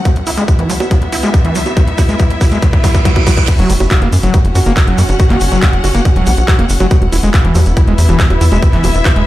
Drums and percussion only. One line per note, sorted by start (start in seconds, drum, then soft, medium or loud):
0.05 kick loud
0.05 closed hi-hat medium
0.05 high bongo soft
0.05 shaker soft
0.16 closed hi-hat medium
0.26 open hi-hat loud
0.26 shaker medium
0.37 closed hi-hat medium
0.37 shaker medium
0.48 kick loud
0.48 closed hi-hat loud
0.48 high bongo soft
0.48 shaker soft
0.59 closed hi-hat medium
0.70 open hi-hat loud
0.70 shaker loud
0.80 closed hi-hat medium
0.80 high bongo medium
0.80 shaker soft
0.91 kick loud
0.91 closed hi-hat medium
0.91 shaker soft
1.02 closed hi-hat soft
1.12 open hi-hat loud
1.12 shaker loud
1.22 closed hi-hat medium
1.22 high bongo soft
1.22 shaker medium
1.34 kick loud
1.34 closed hi-hat medium
1.34 shaker soft
1.45 closed hi-hat medium
1.55 open hi-hat loud
1.55 shaker medium
1.66 closed hi-hat medium
1.66 high bongo soft
1.66 shaker medium
1.77 kick loud
1.77 closed hi-hat medium
1.77 shaker soft
1.87 closed hi-hat soft
1.98 kick loud
1.98 open hi-hat loud
1.98 high bongo medium
1.98 shaker loud
2.09 closed hi-hat medium
2.09 shaker medium
2.19 kick loud
2.19 closed hi-hat medium
2.19 shaker soft
2.30 closed hi-hat medium
2.41 kick loud
2.41 open hi-hat loud
2.41 high bongo soft
2.41 shaker loud
2.51 closed hi-hat medium
2.51 shaker medium
2.62 kick loud
2.62 closed hi-hat loud
2.62 shaker soft
2.73 kick medium
2.73 closed hi-hat soft
2.84 kick loud
2.84 open hi-hat loud
2.84 high bongo soft
2.84 shaker medium
2.95 kick medium
2.95 closed hi-hat medium
2.95 shaker medium
3.05 kick loud
3.05 closed hi-hat medium
3.05 shaker soft
3.16 kick loud
3.16 closed hi-hat soft
3.16 high bongo medium
3.27 kick loud
3.27 open hi-hat loud
3.27 shaker loud
3.37 kick medium
3.37 closed hi-hat medium
3.37 shaker medium
3.48 kick loud
3.48 closed hi-hat loud
3.48 crash loud
3.48 shaker soft
3.59 closed hi-hat medium
3.59 high bongo soft
3.70 open hi-hat loud
3.70 shaker medium
3.80 closed hi-hat medium
3.80 high bongo medium
3.80 shaker medium
3.91 kick loud
3.91 clap loud
3.91 closed hi-hat medium
3.91 shaker soft
4.02 closed hi-hat medium
4.02 high bongo soft
4.12 open hi-hat loud
4.12 shaker medium
4.23 closed hi-hat medium
4.23 shaker medium
4.34 kick loud
4.34 closed hi-hat loud
4.34 high bongo soft
4.34 shaker soft
4.45 closed hi-hat medium
4.55 open hi-hat loud
4.55 high bongo medium
4.55 shaker medium
4.66 closed hi-hat medium
4.66 shaker soft
4.77 kick loud
4.77 clap loud
4.77 closed hi-hat loud
4.77 high bongo soft
4.77 shaker soft
4.88 closed hi-hat medium
4.98 open hi-hat loud
4.98 shaker loud
5.09 closed hi-hat medium
5.09 high bongo soft
5.09 shaker medium
5.19 kick loud
5.19 closed hi-hat medium
5.19 shaker soft
5.30 clap soft
5.30 closed hi-hat medium
5.30 high bongo medium
5.40 open hi-hat loud
5.40 shaker medium
5.52 closed hi-hat medium
5.52 high bongo soft
5.52 shaker medium
5.62 kick loud
5.62 clap loud
5.62 closed hi-hat medium
5.62 shaker soft
5.73 closed hi-hat medium
5.84 open hi-hat loud
5.84 high bongo soft
5.84 shaker medium
5.95 closed hi-hat medium
5.95 shaker medium
6.05 kick loud
6.05 closed hi-hat loud
6.05 high bongo medium
6.05 shaker soft
6.16 closed hi-hat medium
6.26 open hi-hat loud
6.26 high bongo soft
6.26 shaker loud
6.37 closed hi-hat medium
6.37 shaker medium
6.48 kick loud
6.48 clap loud
6.48 closed hi-hat loud
6.48 shaker soft
6.59 closed hi-hat medium
6.59 high bongo soft
6.69 open hi-hat loud
6.69 shaker loud
6.80 closed hi-hat medium
6.80 high bongo medium
6.80 shaker medium
6.90 kick loud
6.90 closed hi-hat medium
6.90 shaker soft
7.02 closed hi-hat soft
7.02 high bongo soft
7.12 open hi-hat loud
7.12 shaker loud
7.23 closed hi-hat medium
7.23 shaker medium
7.34 kick loud
7.34 clap loud
7.34 closed hi-hat medium
7.34 high bongo soft
7.34 shaker soft
7.45 closed hi-hat medium
7.55 open hi-hat loud
7.55 high bongo medium
7.55 shaker medium
7.66 closed hi-hat medium
7.66 shaker medium
7.77 kick loud
7.77 closed hi-hat loud
7.77 high bongo soft
7.77 shaker soft
7.88 closed hi-hat soft
7.98 open hi-hat loud
7.98 shaker medium
8.09 closed hi-hat medium
8.09 high bongo soft
8.09 shaker soft
8.19 kick loud
8.19 clap loud
8.19 closed hi-hat medium
8.19 shaker soft
8.30 closed hi-hat soft
8.30 high bongo medium
8.41 open hi-hat loud
8.41 shaker medium
8.52 closed hi-hat medium
8.52 high bongo soft
8.52 shaker medium
8.62 kick loud
8.62 closed hi-hat medium
8.62 shaker soft
8.73 clap soft
8.73 closed hi-hat soft
8.84 open hi-hat loud
8.84 high bongo soft
8.84 shaker medium
8.95 closed hi-hat medium
8.95 shaker medium
9.05 kick loud
9.05 clap loud
9.05 closed hi-hat medium
9.05 high bongo medium
9.05 shaker soft
9.16 closed hi-hat soft